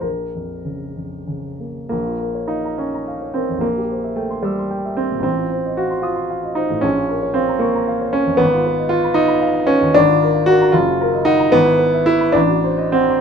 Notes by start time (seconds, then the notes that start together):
0.01 A#1 A#4
0.35 F2
0.65 C#3
0.95 F2
1.27 C#3
1.60 A#3
1.89 A#1 A#3
2.04 F4
2.20 A#4
2.35 C#5
2.48 D#4 F5
2.65 A#5
2.78 C#4 C#6
2.94 A#5
3.08 F5
3.22 C#5
3.34 C4 A#4
3.49 F2
3.58 A#1 A#3
3.77 G4
3.91 C5
4.04 E5
4.16 A3 G5
4.30 C6
4.43 G3 E6
4.59 C6
4.71 G5
4.85 E5
4.97 C4 C5
5.12 A#2
5.20 A1 C4
5.38 F4
5.52 C5
5.65 D#5
5.77 F#4 F5
5.91 C6
6.02 F4 D#6
6.16 C6
6.30 F5
6.44 D#5
6.55 D#4 C5
6.70 A2
6.81 A#1 C#4
6.96 F4
7.09 A#4
7.22 C#5
7.34 C4 F5
7.49 A#5
7.59 A#3 C#6
7.76 A#5
7.88 F5
8.01 C#5
8.13 C#4 A#4
8.26 F2
8.37 G#1 B3
8.53 F4
8.66 B4
8.79 D#5
8.89 F4 F5
9.04 B5
9.14 D#4 D#6
9.28 B5
9.42 F5
9.54 D#5
9.67 C#4 B4
9.81 D#2
9.94 G#1 D4
10.08 F4
10.23 A#4
10.34 F5
10.46 F#4 A#4
10.62 A#5
10.72 F#1 F4
10.87 F#4
11.01 A#4
11.14 D#5
11.25 D#4 F#5
11.40 A#5
11.52 G#1 B3
11.65 E4
11.79 B4
11.94 E5
12.06 E4 B4
12.21 B5
12.32 A1 D4
12.48 F#4
12.64 C5
12.78 D#5
12.92 C4 F#5
13.11 C6